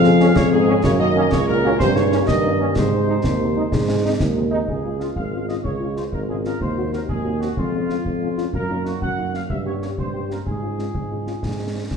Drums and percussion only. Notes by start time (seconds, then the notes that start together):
0.04 snare
0.20 snare
0.36 concert bass drum, snare
0.84 concert bass drum, snare, crash
1.32 concert bass drum, snare
1.80 concert bass drum, snare
1.96 snare
2.12 snare
2.28 concert bass drum, snare
2.76 concert bass drum, snare, crash
3.24 concert bass drum, snare
3.72 concert bass drum, snare
4.20 concert bass drum, snare
4.68 concert bass drum
5.00 snare
5.16 concert bass drum
5.49 snare
5.65 concert bass drum
5.97 snare
6.13 concert bass drum
6.45 snare
6.61 concert bass drum
6.93 snare
7.09 concert bass drum
7.42 snare
7.57 concert bass drum
7.90 snare
8.06 concert bass drum
8.38 snare
8.53 concert bass drum
8.86 snare
9.02 concert bass drum
9.34 snare
9.50 concert bass drum
9.82 snare
9.98 concert bass drum
10.31 snare
10.46 concert bass drum
10.79 snare
10.95 concert bass drum
11.27 snare
11.43 concert bass drum, snare
11.91 concert bass drum, snare